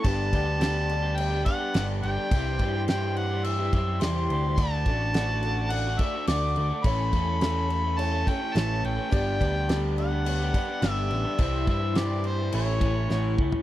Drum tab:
CC |x-x-x-x-x-x-x-x-|x-x-x-x-x-x-x-x-|x-x-x-x-x-x-x-x-|x-x-x-x-x-x-x-x-|
SD |----o-------o---|----o-------o---|----o-------o---|----o-------o---|
FT |----------------|----------------|----------------|----------------|
BD |o-o-------o-----|o-o-------o-----|o-o-------o-----|o-o-------o-----|

CC |x-x-x-x-x-x-x-x-|x-x-x-x-x-x-----|
SD |----o-------o---|----o-------o---|
FT |----------------|---------------o|
BD |o-o-------o-----|o-o-------o---o-|